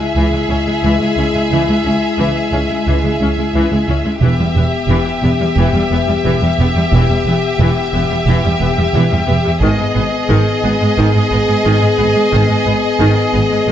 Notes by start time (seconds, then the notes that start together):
Already playing: G#3 E4 G#4 E5
0.15 C#2 E3
0.32 C#2 G#3
0.49 C#2 C#4
0.66 C#2 G#3
0.83 C#2 E3
1.00 C#2 G#3
1.17 C#2 C#4
1.34 C#2 G#3
1.51 C#2 E3
1.68 C#2 G#3
1.84 C#2 C#4
2.18 C#2 E3
2.52 C#2 C#4
2.70 C#2 G#3
2.86 C#2 E3
3.03 C#2 G#3
3.20 C#2 C#4
3.37 C#2 G#3
3.54 C#2 E3
3.71 C#2 G#3
3.88 C#2 C#4
4.05 C#2 G#3
4.21 E1 E2 E3 B3 G4 E5
4.39 E2 G3
4.55 E1 E2 B3
4.89 E1 E2 E3
5.23 E1 E2 B3
5.40 E2 G3
5.56 E1 E2 E3
5.73 E2 G3
5.91 E1 E2 B3
6.08 E2 G3
6.24 E1 E2 E3
6.41 E2 G3
6.58 E1 E2 B3
6.75 E2 G3
6.92 E1 E2 E3
7.09 E2 G3
7.25 E1 E2 B3
7.60 E1 E2 E3
7.94 E1 E2 B3
8.10 E2 G3
8.27 E1 E2 E3
8.44 E2 G3
8.60 E1 E2 B3
8.76 E2 G3
8.94 E1 E2 E3
9.10 E2 G3
9.27 E1 E2 B3
9.44 E2 G3
9.61 G#1 G#2 D#3 B3 G#4 D#5
9.78 G#2 G#3
9.94 G#1 G#2 B3
10.29 G#1 G#2 D#3
10.63 G#1 G#2 B3
10.80 G#2 G#3
10.97 G#1 G#2 D#3
11.14 G#2 G#3
11.31 G#1 G#2 B3
11.47 G#2 G#3
11.64 G#1 G#2 D#3
11.81 G#2 G#3
11.97 G#1 G#2 B3
12.15 G#2 G#3
12.31 G#1 G#2 D#3
12.49 G#2 G#3
12.66 G#1 G#2 B3
12.99 G#1 G#2 D#3
13.33 G#1 G#2 B3
13.50 G#2 G#3
13.67 G#1 G#2 D#3